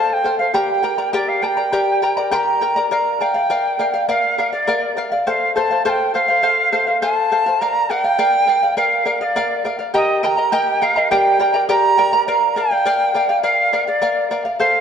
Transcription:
Already playing: A4 C5 F5 A5
0.10 G5 A5
0.24 A4 C5 F5
0.38 C5 F5
0.54 G4 A#4 D5 G5 A#5
0.83 A#4 D5 G5 A#5
0.98 A#4 D5 A#5
1.13 G4 A#4 D5 G5 A#5
1.28 F5
1.42 A#4 D5 G5 A5 A#5
1.46 G5
1.57 A#4 D5 A#5
1.73 G4 A#4 D5 G5 A#5
2.02 A#4 D5 G5 A#5
2.17 A#4 D5 A#5
2.31 G4 A#4 D5 G5 A#5 C6
2.36 A#5
2.61 A#4 D5 G5 A#5
2.76 A#4 D5 A#5
2.91 A#4 D5 F5 A#5
3.13 A#5
3.20 A#4 D5 F5 G5
3.34 D5 F5
3.50 A#4 D5 F5
3.79 A#4 D5 F5
3.94 D5 F5
4.09 A#4 D5 F5
4.38 A#4 D5 F5
4.52 D5 F5
4.67 A#4 D5 F5
4.97 A#4 D5 F5
5.12 D5 F5
5.26 A4 C5 F5 G5
5.55 A4 C5 F5 A5
5.71 C5 F5
5.85 A4 C5 F5 G5 A5
6.14 A4 C5 F5
6.28 C5 F5
6.43 A4 C5 F5
6.72 A4 C5 F5
6.87 C5 F5
7.02 A4 C5 F5 G#5
7.14 A5
7.31 A4 C5 F5
7.46 C5 F5
7.61 A#4 D5 F5 A#5
7.90 A#4 D5 F5 G5
8.04 D5 F5
8.19 A#4 D5 F5
8.47 A#4 D5 F5
8.63 D5 F5
8.77 A#4 D5 F5
9.05 A#4 D5 F5
9.21 D5 D#5 F5
9.36 A#4 D5 F5
9.65 A#4 D5 F5
9.79 D5 F5
9.94 G4 A#4 D#5 G5 A#5
10.23 A#4 D#5 G5 A#5
10.37 A#4 D#5 A#5
10.52 G4 A#4 D#5 G5 A#5
10.82 A#4 D#5 F5 G5 A#5
10.96 A#4 D#5 A#5
11.11 G4 A#4 D5 G5 A#5
11.39 A#4 D5 G5 A#5
11.54 A#4 D5 A#5
11.69 G4 A#4 D5 G5 A#5
11.98 A#4 D5 G5 A#5
12.13 A#4 D5 A#5
12.27 A#4 D5 F5 A#5
12.56 A#4 D5 F5 G5
12.71 D5 F5
12.85 A#4 D5 F5
13.14 A#4 D5 F5
13.29 D5 F5
13.43 A#4 D5 F5
13.73 A#4 D5 F5
13.87 D5 F5
14.02 A#4 D5 F5
14.31 A#4 D5 F5
14.45 D5 F5
14.59 A4 C5 F5

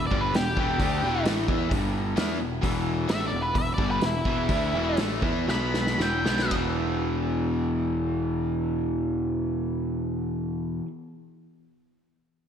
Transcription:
0.07 D5
0.11 G1 G2 D3 G3, kick
0.21 B4
0.34 E1 E2 B2 G4, snare, open hi-hat
0.56 E1 E2 B2 E3, kick
0.79 D2 D3 A3 D4, kick, open hi-hat
1.03 E1 E2 B2 E3
1.25 A1 A2 E3 A3, snare, open hi-hat
1.48 E2 E3 B3 E4, kick
1.70 G1 G2 D3 G3, kick, open hi-hat
2.16 E2 E3 B3 E4, snare, open hi-hat
2.39 E1 E2 B2
2.62 E1 E2 B2 E3, kick, open hi-hat
3.08 A1 A2 E3 A3 E5, snare, open hi-hat
3.27 D5
3.31 E1 E2 B2
3.42 B4
3.54 E1 E2 B2, kick, open hi-hat
3.58 E5
3.74 D5
3.78 G1 G2 D3 G3, kick
3.91 B4
4.01 E1 E2 B2, snare, open hi-hat
4.06 E4
4.25 E1 E2 B2 E3, kick
4.49 D2 D3 A3 D4, kick, open hi-hat
4.73 E1 E2 B2 E3
4.97 A1 A2 E3 A3, snare, open hi-hat
5.22 E2 E3 B3 E4, kick
5.47 B1 B2 F#3 B3 B5, snare
5.74 snare
5.87 snare
5.98 E1 E2 B2 E3, snare
6.02 G5
6.24 B1 B2 F#3 B3, snare
6.39 snare
6.50 E1 E2 B2, kick, ride
6.54 E3

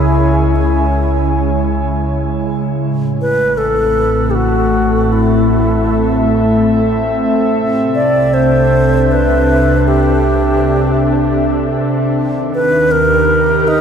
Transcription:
Already playing: C#2 C#3 G#3 E4 C#5 G#5
0.56 C#4
2.82 A1 A2
3.21 B4
3.28 A3
3.39 C4
3.58 A4
3.76 A4
4.30 G4
4.35 F#4
4.74 E5
5.12 E4
7.51 C2 C3
7.95 D5
8.12 D4
8.34 C5
9.12 B4
9.88 G4
12.15 D#2 D#3
12.46 D#4
12.54 B4
12.76 G4
12.91 A#4
13.02 A#5
13.12 A#4
13.68 D#4

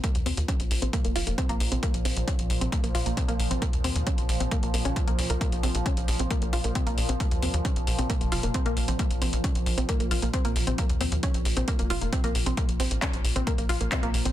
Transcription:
Already playing: A#2 F3
0.04 A#3, kick, closed hi-hat
0.15 D#2, closed hi-hat
0.26 D#2 C4, open hi-hat
0.37 D#2, closed hi-hat
0.48 C#4, kick, closed hi-hat
0.60 A#1, closed hi-hat
0.71 A#1, open hi-hat
0.82 A#1 C4, closed hi-hat
0.93 A#3, kick, closed hi-hat
1.05 F1 A#3, closed hi-hat
1.16 F1 F4, open hi-hat
1.27 F1 A#3, closed hi-hat
1.38 C4, kick, closed hi-hat
1.49 A#1 A#3, closed hi-hat
1.60 A#1, open hi-hat
1.72 A#1 C4, closed hi-hat
1.83 A#3, kick, closed hi-hat
1.94 A#1, closed hi-hat
2.05 A#1 C4, open hi-hat
2.17 A#1, closed hi-hat
2.28 C#4, kick, closed hi-hat
2.39 A#1, closed hi-hat
2.50 A#1, open hi-hat
2.61 A#1 C4, closed hi-hat
2.72 A#3, kick, closed hi-hat
2.84 A#1 A#3, closed hi-hat
2.95 A#1 F4, open hi-hat
3.06 A#1 A#3, closed hi-hat
3.17 C4, kick, closed hi-hat
3.28 A#1 A#3, closed hi-hat
3.40 A#1, open hi-hat
3.51 A#1 C4, closed hi-hat
3.62 A#3, kick, closed hi-hat
3.73 D#2, closed hi-hat
3.84 D#2 C4, open hi-hat
3.96 D#2, closed hi-hat
4.07 C#4, kick, closed hi-hat
4.18 A#1, closed hi-hat
4.29 A#1, open hi-hat
4.40 A#1 C4, closed hi-hat
4.51 A#3, kick, closed hi-hat
4.63 A#1 A#3, closed hi-hat
4.74 A#1 A#3, open hi-hat
4.85 A#1 C#4, closed hi-hat
4.96 F4, kick, closed hi-hat
5.08 C2 A#3, closed hi-hat
5.19 C2, open hi-hat
5.30 C2 A#4, closed hi-hat
5.41 A#3, kick, closed hi-hat
5.52 A#1, closed hi-hat
5.63 A#1 C4, open hi-hat
5.75 A#1, closed hi-hat
5.86 C#4, kick, closed hi-hat
5.97 A#1, closed hi-hat
6.08 A#1, open hi-hat
6.19 A#1 C4, closed hi-hat
6.31 A#3, kick, closed hi-hat
6.42 A#1 A#3, closed hi-hat
6.53 A#1 F4, open hi-hat
6.64 A#1 A#3, closed hi-hat
6.75 C4, kick, closed hi-hat
6.87 A#1 A#3, closed hi-hat
6.98 A#1, open hi-hat
7.09 A#1 C4, closed hi-hat
7.20 A#3, kick, closed hi-hat
7.31 D#2, closed hi-hat
7.42 D#2 C4, open hi-hat
7.54 D#2, closed hi-hat
7.65 C#4, kick, closed hi-hat
7.76 A#1, closed hi-hat
7.87 A#1, open hi-hat
7.98 A#1 C4, closed hi-hat
8.10 A#3, kick, closed hi-hat
8.21 F1 A#3, closed hi-hat
8.32 F1 F4, open hi-hat
8.43 F1 A#3, closed hi-hat
8.54 C4, kick, closed hi-hat
8.66 A#1 A#3, closed hi-hat
8.77 A#1, open hi-hat
8.88 A#1 C4, closed hi-hat
8.99 A#3, kick, closed hi-hat
9.10 A#1, closed hi-hat
9.22 A#1 C4, open hi-hat
9.33 A#1, closed hi-hat
9.44 C#4, kick, closed hi-hat
9.55 A#1, closed hi-hat
9.66 A#1, open hi-hat
9.78 A#1 C4, closed hi-hat
9.89 A#3, kick, closed hi-hat
10.00 A#1 A#3, closed hi-hat
10.11 A#1 F4, open hi-hat
10.22 A#1 A#3, closed hi-hat
10.34 C4, kick, closed hi-hat
10.45 A#1 A#3, closed hi-hat
10.56 A#1, open hi-hat
10.67 A#1 C4, closed hi-hat
10.78 A#3, kick, closed hi-hat
10.89 D#2, closed hi-hat
11.01 D#2 C4, open hi-hat
11.12 D#2, closed hi-hat
11.23 C#4, kick, closed hi-hat
11.34 A#1, closed hi-hat
11.45 A#1, open hi-hat
11.57 A#1 C4, closed hi-hat
11.68 A#3, kick, closed hi-hat
11.79 F1 A#3, closed hi-hat
11.90 F1 F4, open hi-hat
12.01 F1 A#3, closed hi-hat
12.13 C4, kick, closed hi-hat
12.24 A#1 A#3, closed hi-hat
12.35 A#1, open hi-hat
12.46 A#1 C4, closed hi-hat
12.57 A#2 F3 A#3, kick, closed hi-hat
12.68 A#1, closed hi-hat
12.80 A#1 C4, open hi-hat
12.91 A#1, closed hi-hat
13.02 C#4, kick, clap, closed hi-hat
13.13 A#1, closed hi-hat
13.24 A#1, open hi-hat
13.36 A#1 C4, closed hi-hat
13.47 A#3, kick, closed hi-hat
13.58 A#1 A#3, closed hi-hat
13.69 A#1 F4, open hi-hat
13.81 A#1 A#3, closed hi-hat
13.92 C4, kick, clap, closed hi-hat
14.03 A#1 A#3, closed hi-hat
14.14 A#1, open hi-hat
14.25 A#1 C4, closed hi-hat

